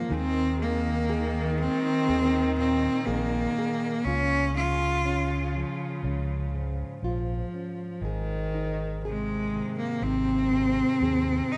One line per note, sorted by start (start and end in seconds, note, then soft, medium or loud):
0.00 0.13 F3 loud
0.00 0.15 A#3 medium
0.00 0.12 G#4 medium
0.09 1.67 D#2 medium
0.09 4.05 D#3 medium
0.09 4.04 D#3 loud
0.09 1.56 G#3 medium
0.09 4.00 D#4 medium
0.09 0.59 G#4 medium
0.13 0.61 C4 loud
0.60 1.55 A#3 medium
0.60 1.09 G#4 medium
1.10 2.08 G#4 medium
1.57 8.02 G#3 medium
1.57 2.54 C4 loud
2.08 2.87 D#2 medium
2.08 3.06 G#4 medium
2.58 4.06 A#2 medium
2.58 3.07 C4 medium
3.06 3.46 A#1 medium
3.06 4.06 A#3 medium
3.06 3.58 G#4 medium
3.58 4.07 G#4 medium
4.03 5.62 C#2 medium
4.03 7.02 C#3 medium
4.03 5.55 C#3 medium
4.03 4.54 C#4 loud
4.07 7.03 F4 medium
4.56 5.04 C#4 medium
4.56 5.51 F4 medium
5.05 6.03 C#4 medium
5.55 7.97 F3 medium
6.03 6.82 C#2 medium
6.03 7.53 C#4 medium
6.54 7.97 G#2 medium
7.03 7.42 A#1 medium
7.03 8.03 F3 medium
7.03 8.03 F4 medium
7.54 7.97 C#4 medium
8.01 9.60 G#1 medium
8.01 10.51 G#2 medium
8.01 9.04 D#3 loud
8.01 9.05 G#4 medium
8.55 10.03 D#4 soft
9.02 11.57 C3 medium
9.02 9.75 G#3 medium
9.02 11.03 G#4 medium
9.53 11.57 D#3 medium
9.78 10.04 A#3 medium
10.02 10.81 G#1 medium
10.02 11.53 C4 medium
10.02 11.53 D#4 soft
10.52 11.57 G#2 medium
11.01 11.40 D#2 medium
11.01 11.57 G#4 medium
11.52 11.57 D#4 loud
11.52 11.57 D#4 medium